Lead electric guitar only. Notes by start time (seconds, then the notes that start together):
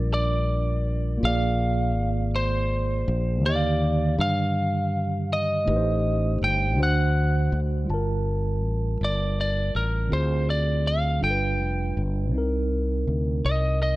Already playing: D5
0.14 D5
1.25 F5
2.36 C5
3.46 D5
4.21 F5
5.33 D#5
6.44 G5
6.83 F#5
9.04 D5
9.41 D5
9.76 A#4
10.13 C5
10.50 D5
10.87 F5
11.24 G5
13.46 D#5
13.83 D#5